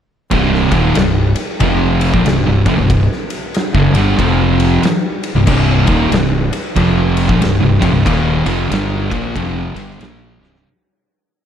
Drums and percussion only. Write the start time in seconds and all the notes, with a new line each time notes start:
0.31 kick, ride
0.54 snare
0.71 kick, ride
0.95 snare, ride
1.36 ride
1.60 kick, ride
2.01 ride
2.14 kick
2.26 snare, ride
2.66 kick, ride
2.90 kick, ride
3.12 snare
3.30 ride
3.54 snare, ride
3.75 kick
3.95 ride
4.19 kick, ride
4.60 ride
4.83 snare, ride
5.23 ride
5.47 kick, crash
5.87 kick, ride
6.12 snare, ride
6.53 ride
6.76 kick, ride
7.17 ride
7.29 kick
7.42 snare, ride
7.82 kick, ride
8.06 kick, ride
8.46 ride
8.72 snare, ride
9.11 kick, ride
9.36 kick, ride
9.76 ride
9.91 snare
10.01 snare, ride
10.44 snare
10.55 snare